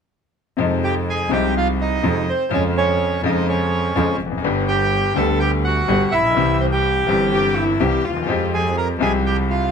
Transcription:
0.57 1.28 F2 medium
0.57 1.29 F2 medium
0.57 1.27 C3 medium
0.57 1.28 F3 medium
0.57 1.28 G#3 soft
0.61 1.29 D#4 medium
0.84 0.95 G4 medium
0.84 0.95 G5 medium
1.09 1.31 G#4 medium
1.09 1.31 G#5 medium
1.31 2.00 C2 medium
1.31 2.01 C2 medium
1.31 2.00 C3 medium
1.31 2.00 F3 soft
1.31 2.01 G#3 soft
1.31 2.01 D#4 medium
1.31 1.55 G4 medium
1.31 1.55 G5 medium
1.57 1.68 F4 medium
1.57 1.68 F5 medium
1.81 2.25 D#4 medium
1.81 2.30 D#5 medium
2.03 2.24 F2 medium
2.03 2.24 C3 medium
2.03 2.24 F3 medium
2.03 2.25 G#3 soft
2.03 2.24 D#4 medium
2.29 2.51 C4 medium
2.29 2.51 C5 medium
2.49 3.20 F2 medium
2.49 3.21 F2 medium
2.49 3.20 C#3 medium
2.49 3.20 F3 medium
2.49 3.21 G#3 soft
2.49 2.64 C#4 medium
2.49 3.22 F4 medium
2.54 2.64 C#5 medium
2.77 3.22 C#4 medium
2.77 3.22 C#5 medium
3.22 3.93 F2 medium
3.22 3.92 C#3 medium
3.22 3.93 F3 medium
3.22 3.93 G#3 medium
3.22 3.47 D#4 soft
3.22 3.94 F4 medium
3.22 3.47 D#5 medium
3.49 4.17 C#4 soft
3.49 4.17 C#5 medium
3.96 4.16 F2 medium
3.96 4.17 F2 medium
3.96 4.16 C#3 medium
3.96 4.16 F3 medium
3.96 4.16 G#3 soft
3.96 4.17 F4 medium
4.20 4.43 F1 soft
4.26 4.32 E2 soft
4.31 4.38 F2 soft
4.38 4.44 F#2 medium
4.42 5.13 G1 medium
4.42 5.13 G2 medium
4.42 5.12 D3 medium
4.42 5.12 G3 medium
4.42 5.13 B3 medium
4.47 5.14 G4 medium
4.68 5.13 G4 medium
4.68 5.18 G5 medium
5.14 5.84 D2 medium
5.14 5.85 D2 medium
5.14 5.85 D3 medium
5.14 5.84 G3 medium
5.14 5.85 B3 medium
5.14 5.39 A4 medium
5.14 5.39 A5 medium
5.18 5.86 G4 medium
5.40 5.52 G4 medium
5.40 5.51 G5 medium
5.64 6.10 F#4 medium
5.64 6.14 F#5 medium
5.88 6.08 G1 medium
5.88 6.09 G2 medium
5.88 6.08 D3 medium
5.88 6.08 G3 soft
5.88 6.09 B3 medium
5.88 6.09 G4 medium
6.12 6.36 A#1 soft
6.12 6.58 E4 medium
6.12 6.61 E5 medium
6.18 6.24 A1 soft
6.25 6.30 A#1 medium
6.30 6.36 B1 medium
6.35 7.05 C2 medium
6.35 7.05 C3 medium
6.35 7.04 E3 medium
6.35 7.04 G3 medium
6.35 7.05 C4 medium
6.35 7.06 G4 medium
6.60 6.67 C4 soft
6.60 6.66 C5 medium
6.72 7.65 G4 medium
6.72 7.64 G5 medium
7.07 7.77 G1 medium
7.07 7.77 G2 medium
7.07 7.76 E3 medium
7.07 7.77 G3 medium
7.07 7.77 C4 medium
7.07 7.78 G4 medium
7.32 7.57 G4 medium
7.56 7.82 E4 medium
7.80 8.01 C2 medium
7.80 8.01 C3 medium
7.80 8.01 E3 medium
7.80 8.01 G3 medium
7.80 8.01 C4 soft
7.80 8.06 G4 medium
7.80 8.01 G4 medium
8.05 8.28 D#2 soft
8.05 8.41 F4 medium
8.11 8.17 D2 soft
8.17 8.23 D#2 soft
8.22 8.29 E2 medium
8.27 8.97 F2 medium
8.27 8.97 F3 medium
8.27 8.97 G#3 medium
8.27 8.98 C4 medium
8.27 8.98 G4 medium
8.54 8.76 G#4 medium
8.54 8.76 G#5 medium
8.78 8.88 A#4 medium
8.78 8.88 A#5 medium
8.99 9.69 C2 medium
8.99 9.70 C2 medium
8.99 9.69 C3 medium
8.99 9.68 F3 medium
8.99 9.69 G#3 soft
8.99 9.70 C4 soft
8.99 9.12 G#4 medium
8.99 9.12 G#5 medium
9.03 9.70 G4 medium
9.26 9.37 G4 medium
9.26 9.37 G5 medium
9.50 9.71 F4 medium
9.50 9.71 F5 medium

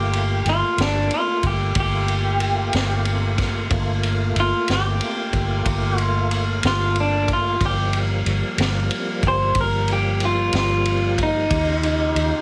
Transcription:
0.00 0.42 G1 medium
0.00 3.67 A3 medium
0.00 3.68 A#3 medium
0.00 3.67 F4 medium
0.00 0.46 G4 medium
0.13 ride medium
0.45 0.61 G1 medium
0.45 0.79 F4 medium
0.45 ride medium
0.78 1.08 G1 medium
0.78 1.11 D4 medium
0.78 snare loud
0.78 ride medium
1.11 1.44 F4 medium
1.11 ride medium
1.43 1.73 G1 medium
1.43 1.77 G4 medium
1.43 kick medium
1.43 ride medium
1.75 2.69 G1 loud
1.75 kick loud
1.75 ride medium
1.80 3.69 G4 medium
2.08 ride medium
2.40 ride medium
2.73 3.67 G1 medium
2.73 snare loud
2.73 ride medium
3.05 ride medium
3.38 kick medium
3.38 snare soft
3.38 ride medium
3.69 4.32 G1 medium
3.69 7.56 A3 medium
3.69 7.56 A#3 medium
3.69 7.56 F4 medium
3.69 kick medium
3.69 ride medium
4.03 ride medium
4.36 4.51 G1 medium
4.36 ride medium
4.40 4.70 F4 loud
4.68 4.99 G1 medium
4.68 snare medium
4.68 ride medium
4.72 5.99 G4 medium
5.01 ride medium
5.33 5.63 G1 medium
5.33 kick medium
5.33 ride medium
5.65 6.59 G1 loud
5.65 kick medium
5.65 ride medium
5.98 6.61 F4 medium
5.98 ride medium
6.31 ride medium
6.63 7.57 G1 medium
6.63 6.97 F4 medium
6.63 snare loud
6.63 ride medium
6.96 ride medium
7.00 7.30 D4 medium
7.28 kick medium
7.28 ride medium
7.33 7.62 F4 medium
7.60 8.22 G1 medium
7.60 11.47 F3 medium
7.60 11.47 G3 medium
7.60 11.47 A#3 medium
7.60 kick loud
7.60 ride medium
7.66 7.95 G4 loud
7.93 ride medium
8.26 8.41 G1 medium
8.26 ride medium
8.58 8.88 G1 medium
8.58 snare loud
8.58 ride medium
8.91 ride medium
9.23 9.53 G1 medium
9.23 kick medium
9.23 ride medium
9.28 9.57 C5 medium
9.55 10.49 G1 medium
9.55 kick loud
9.55 ride medium
9.61 9.90 A#4 medium
9.88 ride medium
9.93 10.22 G4 medium
10.20 ride medium
10.25 10.55 F4 medium
10.53 11.47 G1 medium
10.53 snare loud
10.53 ride medium
10.58 11.19 F4 medium
10.85 ride medium
11.18 kick medium
11.18 ride medium
11.23 12.41 D#4 medium
11.49 12.12 D#2 medium
11.49 12.41 C#3 medium
11.49 12.41 F4 medium
11.49 12.41 G4 medium
11.49 kick loud
11.49 ride medium
11.83 ride medium
12.15 12.31 D#2 medium
12.15 ride medium

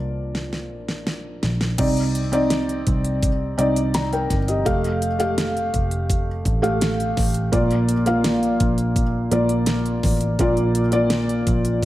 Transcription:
0.00 0.71 C2 medium
0.00 1.80 F3 medium
0.00 1.81 A#3 soft
0.00 1.80 D4 medium
0.00 1.39 F4 medium
0.00 1.38 D5 loud
0.35 snare soft
0.53 snare soft
0.71 1.39 A#1 medium
0.88 snare medium
1.07 snare medium
1.43 1.77 A#1 medium
1.43 snare medium
1.61 snare medium
1.78 2.82 C2 medium
1.78 2.82 C3 medium
1.78 2.19 C4 medium
1.78 2.19 D#4 medium
1.78 2.20 D5 medium
1.78 kick loud
1.78 closed hi-hat medium
1.78 crash medium
1.97 closed hi-hat soft
2.15 closed hi-hat medium
2.32 3.27 C4 medium
2.32 3.28 D#4 medium
2.32 3.28 D5 medium
2.32 closed hi-hat soft
2.50 snare loud
2.50 closed hi-hat medium
2.69 closed hi-hat soft
2.87 3.54 C2 medium
2.87 kick medium
2.87 closed hi-hat medium
3.05 closed hi-hat soft
3.23 kick medium
3.23 closed hi-hat medium
3.58 4.26 C2 medium
3.58 4.39 C4 medium
3.58 4.39 D#4 medium
3.58 3.94 D5 medium
3.58 closed hi-hat medium
3.76 closed hi-hat soft
3.94 4.12 D5 soft
3.94 4.11 A#5 medium
3.94 snare loud
3.94 closed hi-hat medium
4.13 4.47 A#4 soft
4.13 4.46 G5 medium
4.13 closed hi-hat soft
4.30 4.64 G1 medium
4.30 kick medium
4.30 snare soft
4.30 closed hi-hat medium
4.48 4.64 G4 soft
4.48 4.82 D#5 medium
4.48 closed hi-hat soft
4.65 5.70 F1 medium
4.65 5.06 A3 medium
4.65 5.06 G4 medium
4.65 5.06 F5 medium
4.65 kick loud
4.65 closed hi-hat medium
4.84 closed hi-hat soft
5.02 closed hi-hat medium
5.19 6.27 A3 medium
5.19 6.28 G4 medium
5.19 6.28 F5 medium
5.19 closed hi-hat soft
5.38 snare loud
5.38 closed hi-hat medium
5.57 closed hi-hat soft
5.74 6.41 F1 medium
5.74 kick medium
5.74 closed hi-hat medium
5.91 closed hi-hat soft
6.10 kick medium
6.10 closed hi-hat medium
6.45 7.13 A1 medium
6.45 kick medium
6.45 closed hi-hat medium
6.62 7.30 A3 medium
6.62 7.30 G4 medium
6.62 7.31 F5 medium
6.62 closed hi-hat soft
6.81 snare loud
6.81 closed hi-hat medium
7.00 closed hi-hat soft
7.17 7.51 A1 medium
7.17 kick medium
7.17 snare soft
7.17 open hi-hat medium
7.34 closed hi-hat soft
7.52 8.56 A#1 medium
7.52 8.56 A#2 medium
7.52 7.93 A#3 medium
7.52 7.93 F4 medium
7.52 7.93 D5 medium
7.52 kick loud
7.52 closed hi-hat medium
7.71 closed hi-hat soft
7.89 closed hi-hat medium
8.06 9.01 A#3 medium
8.06 9.01 F4 medium
8.06 9.02 F5 medium
8.06 closed hi-hat soft
8.24 snare loud
8.24 closed hi-hat medium
8.43 closed hi-hat soft
8.60 9.28 A#1 medium
8.60 kick medium
8.60 closed hi-hat medium
8.78 closed hi-hat soft
8.96 kick medium
8.96 closed hi-hat medium
9.31 10.00 A#1 medium
9.31 10.13 A#3 medium
9.31 10.13 F4 medium
9.31 10.14 D5 medium
9.31 closed hi-hat medium
9.49 closed hi-hat soft
9.66 snare loud
9.66 closed hi-hat medium
9.86 closed hi-hat soft
10.03 10.37 A1 medium
10.03 kick medium
10.03 snare soft
10.03 open hi-hat medium
10.21 closed hi-hat soft
10.39 11.43 A#1 medium
10.39 11.43 A#2 medium
10.39 10.80 A#3 medium
10.39 10.80 F4 medium
10.39 10.81 D5 medium
10.39 kick loud
10.39 closed hi-hat medium
10.57 closed hi-hat soft
10.75 closed hi-hat medium
10.92 11.85 A#3 medium
10.92 11.85 F4 medium
10.92 11.85 D5 medium
10.92 closed hi-hat soft
11.10 snare loud
11.10 closed hi-hat medium
11.29 closed hi-hat soft
11.47 11.85 A#1 medium
11.47 kick medium
11.47 closed hi-hat medium
11.65 closed hi-hat soft

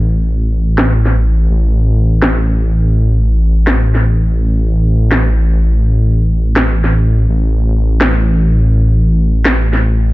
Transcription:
0.00 1.49 A1 medium
0.78 snare loud
1.06 snare soft
1.50 7.27 A1 medium
2.22 snare loud
3.67 snare loud
3.95 snare soft
5.12 snare loud
6.56 snare loud
6.84 snare soft
7.29 10.13 A1 medium
8.01 snare loud
9.45 snare loud
9.73 snare soft

